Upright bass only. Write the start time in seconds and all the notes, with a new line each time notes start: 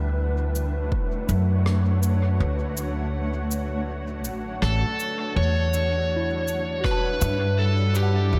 Already playing: D2
1.29 F#2
2.40 D2
4.25 A1
4.62 A1
5.36 E2
7.22 G2
8.33 E2